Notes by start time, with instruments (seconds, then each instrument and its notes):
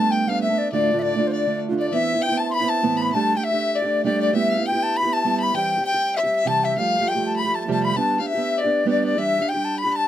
Already playing: steel-string acoustic guitar G3 A3, flute A5, fiddle A5
0.00 steel-string acoustic guitar B3 D4
0.11 flute G5, fiddle G5
0.27 steel-string acoustic guitar G3 A3 B3 D4, flute F5, fiddle F5
0.42 fiddle E5, flute E5
0.50 steel-string acoustic guitar A3 B3 D4
0.58 flute D5
0.72 steel-string acoustic guitar D2 A2 D3 A3 D4 F4, flute D5, fiddle D5
0.93 steel-string acoustic guitar D2 A2 D3 A3 D4 F4
0.99 flute D5 E5, fiddle D5
1.16 steel-string acoustic guitar D3 A3 D4 F4
1.27 flute C5
1.32 flute D5, fiddle D5
1.46 steel-string acoustic guitar D3 A3 D4 F4
1.69 steel-string acoustic guitar D3 A3 D4 F4
1.78 fiddle D5, flute D5
1.91 steel-string acoustic guitar E3 B3 C4 E4, fiddle E5, flute E5
2.15 steel-string acoustic guitar B3 C4 E4
2.22 fiddle G5, flute G5
2.29 steel-string acoustic guitar B3 C4 E4
2.37 fiddle A5, flute A5
2.50 fiddle B5, flute C6
2.54 flute B5
2.60 steel-string acoustic guitar B3 C4 E4
2.68 fiddle A5, flute A5
2.83 steel-string acoustic guitar A2 E3 B3 C4 E4
2.97 fiddle B5
3.02 flute B5
3.13 steel-string acoustic guitar G3 A3 D4 G4, fiddle A5, flute A5
3.36 steel-string acoustic guitar A3 D4 G4, fiddle G5, flute G5
3.44 fiddle E5, flute E5
3.52 steel-string acoustic guitar A3 D4 G4
3.75 flute D5, fiddle D5
3.82 steel-string acoustic guitar A3 D4 G4
4.04 steel-string acoustic guitar G3 A3 D4 G4, fiddle D5, flute D5
4.20 fiddle D5, flute D5
4.33 steel-string acoustic guitar G3 B3 E4 G4, fiddle E5, flute E5
4.51 fiddle F5
4.57 steel-string acoustic guitar B3 E4 G4
4.65 fiddle G5, flute G5
4.72 steel-string acoustic guitar B3 E4 G4
4.83 flute A5
4.96 fiddle B5, flute B5
5.03 steel-string acoustic guitar B3 E4 G4
5.13 fiddle A5, flute A5
5.25 steel-string acoustic guitar G3 B3 E4 G4
5.40 fiddle B5, flute B5
5.54 steel-string acoustic guitar E3 G3 C4 G4, fiddle G5, flute G5
5.77 steel-string acoustic guitar G3 C4 G4
5.85 fiddle G5, flute G5
5.94 steel-string acoustic guitar G3 C4 G4
6.16 fiddle E5, flute E5
6.23 steel-string acoustic guitar G3 C4 G4, fiddle E5
6.35 fiddle E5
6.45 steel-string acoustic guitar C3 E3 G3 C4 G4, flute A5, fiddle A5
6.64 flute E5, fiddle E5
6.76 steel-string acoustic guitar F3 G3 A3 G4, fiddle F5, flute F5
6.99 steel-string acoustic guitar F3 G3 A3 G4
7.07 fiddle G5, flute G5
7.15 steel-string acoustic guitar F3 G3 A3 G4
7.26 flute A5
7.36 fiddle B5, flute B5
7.45 steel-string acoustic guitar F3 G3 A3 G4
7.50 fiddle A5 B5
7.56 flute A5
7.62 flute A5
7.67 steel-string acoustic guitar F2 C3 F3 G3 A3 G4
7.73 fiddle A5, flute A5
7.83 fiddle B5, flute B5
7.95 steel-string acoustic guitar G3 B3 D4 G4, fiddle A5, flute A5
8.19 steel-string acoustic guitar B3 D4 G4, fiddle F5
8.26 fiddle E5, flute E5
8.35 steel-string acoustic guitar B3 D4 G4
8.58 fiddle D5, flute D5
8.64 steel-string acoustic guitar B3 D4 G4
8.85 steel-string acoustic guitar G3 B3 D4 G4, fiddle D5
8.90 flute D5
9.05 fiddle D5, flute D5
9.17 steel-string acoustic guitar E3 G3 D4 G4, fiddle E5, flute E5
9.38 steel-string acoustic guitar G3 D4 G4, fiddle F5
9.49 flute G5, fiddle G5
9.54 steel-string acoustic guitar G3 D4 G4
9.65 flute A5
9.78 fiddle B5, flute B5
9.85 steel-string acoustic guitar G3 D4 G4
9.93 fiddle A5, flute A5